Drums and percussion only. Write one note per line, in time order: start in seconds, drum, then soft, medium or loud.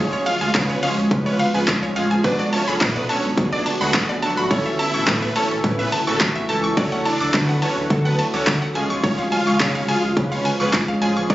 0.13 shaker medium
0.26 open hi-hat medium
0.26 shaker soft
0.41 shaker medium
0.54 kick loud
0.54 clap medium
0.54 clap loud
0.54 closed hi-hat medium
0.54 shaker medium
0.69 shaker medium
0.83 open hi-hat medium
0.83 shaker medium
0.98 shaker medium
1.11 kick loud
1.11 closed hi-hat medium
1.11 shaker medium
1.26 shaker medium
1.40 open hi-hat medium
1.40 shaker medium
1.55 shaker medium
1.68 kick loud
1.68 clap loud
1.68 closed hi-hat medium
1.68 shaker medium
1.83 shaker soft
1.96 open hi-hat medium
1.96 shaker medium
2.11 shaker medium
2.24 kick loud
2.24 closed hi-hat medium
2.24 shaker medium
2.39 shaker medium
2.53 open hi-hat medium
2.53 shaker medium
2.68 shaker medium
2.81 kick loud
2.81 clap medium
2.81 clap loud
2.81 closed hi-hat medium
2.81 shaker medium
2.96 shaker medium
3.09 open hi-hat medium
3.09 shaker medium
3.24 shaker medium
3.37 kick loud
3.37 closed hi-hat medium
3.37 shaker medium
3.52 shaker medium
3.66 open hi-hat medium
3.66 shaker medium
3.81 shaker medium
3.94 kick loud
3.94 clap medium
3.94 clap loud
3.94 closed hi-hat medium
3.94 shaker medium
4.09 shaker medium
4.22 open hi-hat medium
4.22 shaker medium
4.37 shaker medium
4.51 kick loud
4.51 closed hi-hat medium
4.51 shaker medium
4.66 shaker medium
4.79 open hi-hat medium
4.79 shaker medium
4.94 shaker medium
5.07 kick loud
5.07 clap medium
5.07 clap loud
5.07 closed hi-hat medium
5.07 shaker medium
5.22 shaker medium
5.36 open hi-hat medium
5.36 shaker medium
5.51 shaker medium
5.64 kick loud
5.64 closed hi-hat medium
5.64 shaker medium
5.79 shaker medium
5.92 open hi-hat medium
5.92 shaker medium
6.07 shaker medium
6.21 kick loud
6.21 clap medium
6.21 clap loud
6.21 closed hi-hat medium
6.21 shaker medium
6.36 shaker medium
6.49 open hi-hat medium
6.49 shaker medium
6.64 shaker loud
6.77 kick loud
6.77 closed hi-hat medium
6.77 shaker medium
6.92 shaker medium
7.06 open hi-hat medium
7.06 shaker medium
7.21 shaker medium
7.34 kick loud
7.34 clap medium
7.34 clap loud
7.34 closed hi-hat medium
7.34 shaker medium
7.49 shaker medium
7.62 open hi-hat medium
7.62 shaker medium
7.77 shaker medium
7.90 kick loud
7.90 closed hi-hat medium
7.90 shaker medium
8.05 shaker medium
8.19 open hi-hat medium
8.19 shaker medium
8.34 shaker medium
8.47 kick loud
8.47 clap medium
8.47 clap loud
8.47 closed hi-hat medium
8.47 shaker medium
8.62 shaker medium
8.75 open hi-hat medium
8.75 shaker medium
8.90 shaker medium
9.04 kick loud
9.04 closed hi-hat medium
9.04 shaker medium
9.19 shaker medium
9.32 open hi-hat medium
9.32 shaker medium
9.47 shaker medium
9.60 kick loud
9.60 clap medium
9.60 clap loud
9.60 closed hi-hat medium
9.60 shaker medium
9.75 shaker medium
9.89 open hi-hat medium
9.89 shaker medium
10.03 shaker medium
10.17 kick loud
10.17 closed hi-hat medium
10.17 shaker medium
10.32 shaker medium
10.45 open hi-hat medium
10.45 shaker medium
10.60 shaker medium
10.73 kick loud
10.73 clap loud
10.73 closed hi-hat medium
10.73 shaker medium
10.89 shaker soft
11.02 open hi-hat medium
11.02 shaker medium
11.16 shaker loud
11.30 kick loud
11.30 closed hi-hat medium
11.30 shaker medium